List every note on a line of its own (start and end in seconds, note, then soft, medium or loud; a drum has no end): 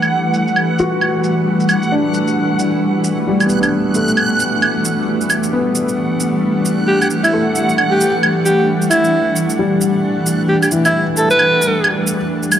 0.00 12.60 E3 medium
0.00 12.60 G3 medium
0.00 12.60 A3 medium
0.00 12.60 D4 medium
0.00 12.60 G4 soft
0.00 12.60 B4 medium
0.00 12.60 F#5 medium
0.00 claves soft
0.00 shaker soft
0.34 shaker medium
0.48 shaker soft
0.56 claves medium
0.79 2.23 F#4 medium
0.79 shaker medium
1.01 claves medium
1.24 shaker medium
1.60 shaker soft
1.69 claves medium
1.69 shaker soft
1.83 shaker soft
1.92 3.36 D4 medium
2.14 shaker soft
2.28 shaker soft
2.59 shaker medium
3.04 shaker medium
3.27 4.71 G3 medium
3.40 claves soft
3.40 shaker soft
3.46 4.83 B3 soft
3.46 shaker soft
3.60 4.99 D4 soft
3.60 claves soft
3.60 shaker soft
3.94 5.39 A3 medium
3.94 shaker soft
4.08 shaker soft
4.17 claves medium
4.40 shaker soft
4.62 claves medium
4.85 shaker medium
5.21 shaker soft
5.30 claves soft
5.30 shaker soft
5.43 shaker soft
5.53 6.97 B3 medium
5.75 shaker soft
5.89 shaker soft
6.20 shaker soft
6.65 shaker soft
6.88 6.96 G4 medium
7.01 7.07 G4 medium
7.01 claves soft
7.01 shaker soft
7.10 shaker soft
7.24 7.47 E4 medium
7.24 claves soft
7.24 shaker soft
7.33 8.77 A3 medium
7.55 shaker soft
7.69 shaker soft
7.78 claves medium
7.91 8.15 G4 medium
8.01 shaker soft
8.23 claves medium
8.45 8.69 G4 medium
8.45 shaker soft
8.82 shaker soft
8.90 9.36 E4 medium
8.90 claves medium
8.90 shaker soft
9.04 shaker soft
9.36 shaker soft
9.50 shaker soft
9.59 11.03 G3 medium
9.81 shaker soft
10.26 shaker medium
10.49 10.57 G4 medium
10.63 10.68 G4 medium
10.63 claves soft
10.63 shaker soft
10.71 12.16 E3 medium
10.71 shaker soft
10.85 11.09 E4 medium
10.85 claves soft
10.85 shaker soft
11.17 11.28 A4 medium
11.17 shaker medium
11.30 11.93 B4 medium
11.30 shaker soft
11.39 claves medium
11.62 shaker medium
11.84 claves medium
12.07 shaker medium
12.43 shaker soft
12.52 claves medium
12.52 shaker medium